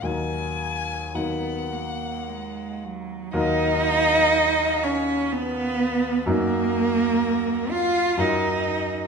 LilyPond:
<<
  \new Staff \with { instrumentName = "Violin" } { \time 3/4 \key ees \minor \tempo 4 = 61 aes''4 ges''4. r8 | ees''4. des''8 ces''4 | bes'4. f''8 ees''4 | }
  \new Staff \with { instrumentName = "Cello" } { \time 3/4 \key ees \minor r4 ces'8 bes8 aes8 ges8 | ees'4. des'8 ces'4 | bes4. f'8 ees'4 | }
  \new Staff \with { instrumentName = "Grand piano" } { \time 3/4 \key ees \minor <ees, ges ees' bes'>4 <ees, ges ees' bes'>2 | <ees, ges ees' bes'>2. | <ges, ges ees' bes'>2 <ges, ges ees' bes'>4 | }
>>